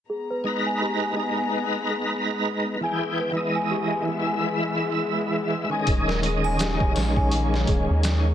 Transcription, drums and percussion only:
5.87 kick, closed hi-hat
6.09 snare
6.23 closed hi-hat
6.44 triangle
6.59 snare, closed hi-hat, maracas
6.80 kick
6.96 snare, closed hi-hat, triangle
7.16 kick
7.31 closed hi-hat
7.54 snare
7.67 kick, closed hi-hat
8.03 snare, closed hi-hat, maracas

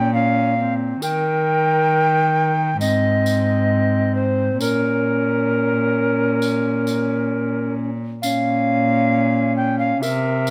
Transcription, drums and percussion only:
1.02 tambourine
2.81 tambourine
3.26 tambourine
4.61 tambourine
6.42 tambourine
6.87 tambourine
8.23 tambourine
10.03 tambourine
10.47 tambourine

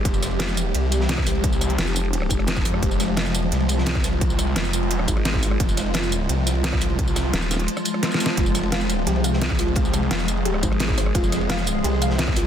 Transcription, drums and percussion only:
0.05 kick, closed hi-hat, ride
0.14 ride, tambourine
0.23 cross-stick, snare, closed hi-hat, ride, tambourine
0.31 ride
0.39 snare, closed hi-hat, ride
0.49 tambourine
0.57 closed hi-hat, ride, tambourine
0.75 closed hi-hat, ride
0.92 closed hi-hat, ride, tambourine
1.01 snare
1.09 snare, closed hi-hat, ride
1.18 kick, cross-stick
1.26 snare, open hi-hat, ride, tambourine
1.35 ride
1.44 kick, closed hi-hat, ride
1.52 tambourine
1.61 cross-stick, closed hi-hat, ride, tambourine
1.69 closed hi-hat, ride
1.79 snare, closed hi-hat, ride
1.87 tambourine
1.95 closed hi-hat, ride, tambourine
2.05 ride
2.13 closed hi-hat, ride
2.22 cross-stick
2.30 kick, closed hi-hat, ride, tambourine
2.39 cross-stick, ride
2.47 snare, closed hi-hat, ride
2.57 kick, tambourine
2.65 open hi-hat, ride, tambourine
2.74 cross-stick
2.83 kick, closed hi-hat, ride
2.91 ride, tambourine
3.00 cross-stick, snare, closed hi-hat, ride, tambourine
3.08 ride
3.17 snare, closed hi-hat, ride
3.26 tambourine
3.35 closed hi-hat, ride, tambourine
3.42 ride
3.52 snare, closed hi-hat, ride
3.60 ride
3.69 closed hi-hat, ride, tambourine
3.78 snare
3.86 snare, closed hi-hat, ride
3.95 kick, cross-stick
4.04 snare, open hi-hat, ride, tambourine
4.13 ride
4.21 kick, closed hi-hat, ride
4.30 tambourine
4.39 cross-stick, closed hi-hat, ride, tambourine
4.47 ride
4.56 snare, closed hi-hat, ride
4.65 tambourine
4.73 closed hi-hat, ride, tambourine
4.83 ride
4.91 closed hi-hat, ride
4.99 cross-stick
5.08 kick, closed hi-hat, ride, tambourine
5.17 cross-stick, ride
5.25 snare, closed hi-hat, ride
5.34 kick
5.42 snare, open hi-hat, ride, tambourine
5.51 cross-stick
5.60 kick, closed hi-hat, ride
5.69 ride, tambourine
5.77 cross-stick, snare, closed hi-hat, ride, tambourine
5.86 ride
5.94 snare, closed hi-hat, ride
6.03 tambourine
6.12 closed hi-hat, ride, tambourine
6.29 closed hi-hat, ride
6.47 snare, closed hi-hat, ride, tambourine
6.55 ride
6.64 snare, closed hi-hat, ride
6.73 kick, cross-stick
6.81 snare, open hi-hat, ride, tambourine
6.90 ride
6.99 kick, closed hi-hat, ride
7.08 tambourine
7.16 cross-stick, snare, closed hi-hat, ride, tambourine
7.34 snare, closed hi-hat, ride
7.42 tambourine
7.51 snare, closed hi-hat, ride, tambourine
7.59 closed hi-hat, ride
7.68 closed hi-hat, ride
7.77 cross-stick, tambourine
7.85 closed hi-hat, ride, tambourine
7.94 cross-stick, ride
8.03 snare, closed hi-hat, ride
8.11 snare, ride, tambourine
8.20 snare, open hi-hat, ride, tambourine
8.26 snare
8.37 kick, closed hi-hat, ride
8.46 ride, tambourine
8.54 cross-stick, snare, closed hi-hat, ride, tambourine
8.63 ride
8.72 snare, closed hi-hat, ride
8.81 tambourine
8.90 closed hi-hat, ride, tambourine
8.99 ride
9.06 snare, closed hi-hat, ride
9.16 ride
9.24 closed hi-hat, ride, tambourine
9.33 snare
9.42 snare, closed hi-hat, ride
9.50 kick, cross-stick
9.59 snare, open hi-hat, ride, tambourine
9.68 ride
9.75 kick, closed hi-hat, ride
9.85 tambourine
9.94 cross-stick, closed hi-hat, ride, tambourine
10.03 ride
10.11 snare, closed hi-hat, ride
10.20 tambourine
10.28 closed hi-hat, ride, tambourine
10.37 ride
10.45 closed hi-hat, ride
10.54 cross-stick
10.63 kick, closed hi-hat, ride, tambourine
10.72 cross-stick, ride
10.79 snare, closed hi-hat, ride
10.89 kick
10.98 snare, open hi-hat, ride, tambourine
11.06 cross-stick
11.15 kick, closed hi-hat, ride
11.23 ride, tambourine
11.32 cross-stick, snare, closed hi-hat, ride, tambourine
11.41 ride
11.49 snare, closed hi-hat, ride
11.58 tambourine
11.66 closed hi-hat, ride, tambourine
11.84 closed hi-hat, ride
12.02 closed hi-hat, ride, tambourine
12.10 snare
12.18 snare, closed hi-hat, ride
12.28 kick, cross-stick
12.36 snare, open hi-hat, ride, tambourine

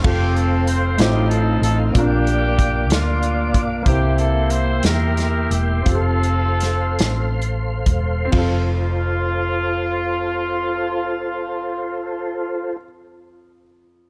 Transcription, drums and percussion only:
0.04 kick, crash
0.37 closed hi-hat
0.67 closed hi-hat
0.98 snare, closed hi-hat
1.31 closed hi-hat
1.63 closed hi-hat
1.95 kick, closed hi-hat
2.27 closed hi-hat
2.59 kick, closed hi-hat
2.90 snare, closed hi-hat
3.23 closed hi-hat
3.54 kick, closed hi-hat
3.86 kick, closed hi-hat
4.18 closed hi-hat
4.50 closed hi-hat
4.83 snare, closed hi-hat
5.17 snare, closed hi-hat
5.51 closed hi-hat
5.86 kick, closed hi-hat
6.23 closed hi-hat
6.60 snare, closed hi-hat
6.99 snare, closed hi-hat
7.42 closed hi-hat
7.86 kick, closed hi-hat
8.32 kick, crash

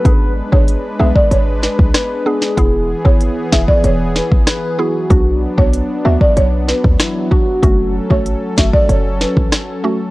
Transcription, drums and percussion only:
0.05 kick, closed hi-hat
0.53 kick
0.68 closed hi-hat
1.16 kick
1.31 closed hi-hat
1.63 snare
1.79 kick
1.94 cross-stick, snare, closed hi-hat
2.42 snare
2.58 kick, closed hi-hat
3.05 kick
3.21 closed hi-hat
3.52 kick, snare
3.68 kick
3.84 closed hi-hat
4.16 snare
4.32 kick
4.47 cross-stick, snare, closed hi-hat
5.10 kick, closed hi-hat
5.58 kick
5.73 closed hi-hat
6.21 kick
6.37 closed hi-hat
6.69 snare
6.84 kick
7.00 cross-stick, snare, closed hi-hat
7.32 kick
7.63 kick, closed hi-hat
8.11 kick
8.26 closed hi-hat
8.58 kick, snare
8.73 kick
8.89 closed hi-hat
9.21 snare
9.37 kick
9.52 cross-stick, snare, closed hi-hat

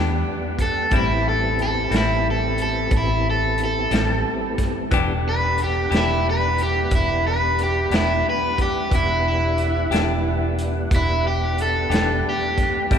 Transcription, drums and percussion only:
0.59 kick, closed hi-hat
0.91 kick, closed hi-hat
1.59 closed hi-hat
1.92 snare, closed hi-hat
2.58 closed hi-hat
2.91 kick, closed hi-hat
3.58 closed hi-hat
3.91 snare, closed hi-hat
4.58 kick, snare, closed hi-hat
4.91 kick, closed hi-hat
5.58 closed hi-hat
5.92 snare, closed hi-hat
6.58 closed hi-hat
6.91 kick, closed hi-hat
7.59 closed hi-hat
7.91 snare, closed hi-hat
8.58 kick, closed hi-hat
8.91 kick, closed hi-hat
9.58 closed hi-hat
9.92 snare, closed hi-hat
10.59 closed hi-hat
10.91 kick, closed hi-hat
11.58 closed hi-hat
11.91 snare, closed hi-hat
12.58 kick, snare, closed hi-hat
12.91 kick, closed hi-hat

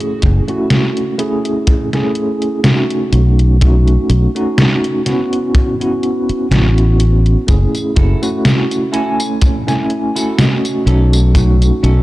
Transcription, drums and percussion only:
0.00 closed hi-hat
0.22 kick, closed hi-hat
0.48 closed hi-hat
0.70 snare, closed hi-hat
0.97 closed hi-hat
1.19 closed hi-hat
1.45 closed hi-hat
1.67 kick, closed hi-hat
1.93 snare, closed hi-hat
2.15 closed hi-hat
2.42 closed hi-hat
2.64 snare, closed hi-hat
2.90 closed hi-hat
3.13 closed hi-hat
3.39 closed hi-hat
3.61 kick, closed hi-hat
3.87 closed hi-hat
4.10 closed hi-hat
4.36 closed hi-hat
4.58 snare, closed hi-hat
4.84 closed hi-hat
5.06 snare, closed hi-hat
5.33 closed hi-hat
5.55 kick, closed hi-hat
5.81 closed hi-hat
6.03 closed hi-hat
6.29 closed hi-hat
6.52 snare, closed hi-hat
6.78 closed hi-hat
7.00 closed hi-hat
7.26 closed hi-hat
7.48 kick, closed hi-hat, tambourine
7.75 closed hi-hat, tambourine
7.96 kick, closed hi-hat
8.23 closed hi-hat, tambourine
8.45 snare, closed hi-hat, tambourine
8.71 closed hi-hat, tambourine
8.94 closed hi-hat
9.20 closed hi-hat, tambourine
9.42 kick, closed hi-hat, tambourine
9.68 snare, closed hi-hat, tambourine
9.90 closed hi-hat
10.16 closed hi-hat, tambourine
10.38 snare, closed hi-hat, tambourine
10.65 closed hi-hat, tambourine
10.87 closed hi-hat
11.13 closed hi-hat, tambourine
11.35 kick, closed hi-hat, tambourine
11.62 closed hi-hat, tambourine
11.84 closed hi-hat

